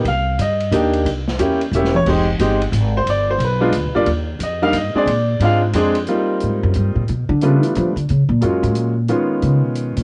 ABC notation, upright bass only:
X:1
M:3/4
L:1/8
Q:"Swing" 1/4=180
K:Eb
V:1 name="Upright bass" clef=bass
C,,2 G,,2 E,,2 | C,,2 =E,,2 =E,,,2 | F,,,2 G,,,2 A,,,2 | G,,,2 =B,,,2 (3D,, B,,, G,,, |
E,,2 F,,2 G,, z | B,,2 A,,2 F,,2 | z2 A,, _G,, =G,, B,, | =B,, D, _D, _F, =F, =D, |
_D, B,, _G,, A,, B,,2 | z2 _D, _C,2 B,, |]